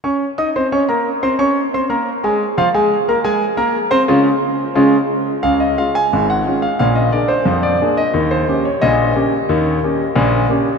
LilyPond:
<<
  \new Staff \with { instrumentName = "Grand piano" } { \time 2/4 \key des \major \tempo 4 = 89 <des' des'' des'''>8 <ees' ees'' ees'''>16 <c' c'' c'''>16 <des' des'' des'''>16 <bes bes' bes''>8 <c' c'' c'''>16 | <des' des'' des'''>8 <c' c'' c'''>16 <bes bes' bes''>8 <aes aes' aes''>8 <f f' f''>16 | <aes aes' aes''>8 <bes bes' bes''>16 <aes aes' aes''>8 <bes bes' bes''>8 <c' c'' c'''>16 | <des aes des' f'>8 r8 <des aes des' f'>8 r8 |
f''16 ees''16 f''16 aes''8 ges''8 f''16 | f''16 ees''16 d''16 c''8 d''8 ees''16~ | ees''16 c''8 des''16 ees''4~ | ees''2 | }
  \new Staff \with { instrumentName = "Grand piano" } { \time 2/4 \key des \major r2 | r2 | r2 | r2 |
<des, des>8 <aes des' f'>8 <aes,, aes,>8 <aes des' f'>8 | <bes,, bes,>8 <bes d' aes'>8 <f, f>8 <bes d' aes'>8 | <ees, ees>8 <bes des' g'>8 <bes,, bes,>8 <bes des' g'>8 | <ees, ees>8 <bes des' g'>8 <bes,, bes,>8 <bes des' g'>8 | }
>>